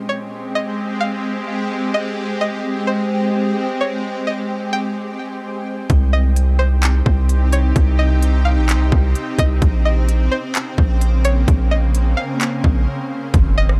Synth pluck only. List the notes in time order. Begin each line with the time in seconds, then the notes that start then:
0.09 C#5
0.55 D#5
1.01 F5
1.94 D#5
2.41 D#5
2.87 C5
3.81 C#5
4.27 D#5
4.73 G5
6.13 D#5
6.59 C5
7.53 C#5
7.99 D#5
8.45 F5
9.39 D#5
9.85 D#5
10.32 C5
11.25 C#5
11.71 D#5
12.17 F5
13.58 D#5